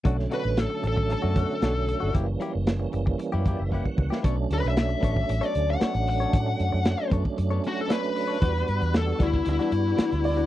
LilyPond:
<<
  \new Staff \with { instrumentName = "Upright piano" } { \time 4/4 \key b \minor \tempo 4 = 115 r1 | r1 | r1 | r1 |
r2. r8 d''8 | }
  \new Staff \with { instrumentName = "Lead electric guitar" } { \time 4/4 \key b \minor r8 b'8 a'8 a'8 a'2 | r1 | r8 b'16 e''4. d''8 fis''8. fis''8~ | fis''4. r4 fis'16 a'16 b'4~ |
b'4 a'8 e'8 e'2 | }
  \new Staff \with { instrumentName = "Clean electric guitar" } { \time 4/4 \key b \minor <b, a d' fis'>16 r16 <b, a d' fis'>16 r4. <b, a d' fis'>16 <b, a d' fis'>16 r16 <b, a d' fis'>16 r8 <a d' fis'>16 | <fis ais e' g'>16 r16 <fis ais e' g'>16 r4. <fis ais e' g'>16 <fis ais e' g'>16 r16 <fis ais e' g'>16 r8 <ais e' g'>16 | <b d' a' cis''>16 r4 r16 <b d' a' cis''>16 r8 <b d' a' cis''>16 r8 <b d' a' cis''>16 r8 <d' a' cis''>16 | r4. <b d' a' cis''>16 r8 <b d' a' cis''>16 r8 <b d' a' cis''>16 r8 <d' a' cis''>16 |
<e g d' fis'>16 r4 r16 <e g d' fis'>16 r8 <e g d' fis'>16 r8 <e g d' fis'>16 r8 <g d' fis'>16 | }
  \new Staff \with { instrumentName = "Tonewheel organ" } { \time 4/4 \key b \minor r1 | r2 r8 d''16 e''16 fis''4 | r1 | r1 |
r1 | }
  \new Staff \with { instrumentName = "Tonewheel organ" } { \time 4/4 \key b \minor <d fis a cis'>1 | <e g ais cis'>1 | <fis a cis' d'>1~ | <fis a cis' d'>1 |
<g b d' fis'>1 | }
  \new Staff \with { instrumentName = "Fingered electric bass" } { \clef bass \time 4/4 \key b \minor b,,8 r16 a,,8 r16 a,,8. fis,8 r16 b,,8. g,,16 | fis,,8 r16 fis,,8. fis,,8 r16 fis,8 fis,,8 r16 cis,16 r16 | b,,8 d,16 b,,8. a,,8 a,,16 r16 d,8 r16 a,,8. | a,8 fis,16 fis,8 r16 fis,16 r16 fis,8 r4. |
e,8 g,16 e,8. d,8 d,16 r16 g,8 r16 d,8. | }
  \new DrumStaff \with { instrumentName = "Drums" } \drummode { \time 4/4 <hh bd>16 sn16 hh8 <hh sn>8 hh16 bd16 hh8 <hh bd>8 <hh sn>8 hh8 | <hh bd>8 hh8 <hh sn>8 hh16 bd16 hh8 <hh bd>8 bd16 bd16 bd16 sn16 | <hh bd>8 hh16 hh16 <hh sn>8 <hh bd>16 bd16 hh16 hh16 hh8 <hh sn>16 hh16 hho16 hh16 | <hh bd>8 hh8 <hh sn>8 <hh bd>16 bd16 hh8 hh8 <hh sn>16 hh16 hho8 |
<hh bd>16 sn16 hh16 hh16 <hh sn>8 <hh bd>16 bd16 hh16 hh16 hh8 <hh sn>16 hh16 hho16 hh16 | }
>>